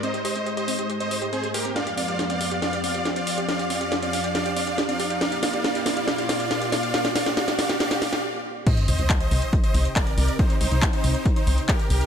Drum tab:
CC |----------------|----------------|----------------|----------------|
HH |xxoxxxoxxxoxxxox|xxoxxxoxxxoxxxox|xxoxxxoxxxoxxxox|xxoxxxoxxxoxxxox|
CP |----------------|----------------|----------------|----------------|
SD |----------------|o---o---o---o---|o---o---o---o---|o-o-o-o-o-o-o-o-|
BD |----------------|----------------|----------------|----------------|

CC |----------------|x---------------|----------------|
HH |xxoxxxoxxxox----|xxoxxxoxxxoxxxox|xxoxxxoxxxoxxxox|
CP |----------------|----x-------x---|----x-------x---|
SD |oooooooooooo----|----------------|----------------|
BD |----------------|o---o---o---o---|o---o---o---o---|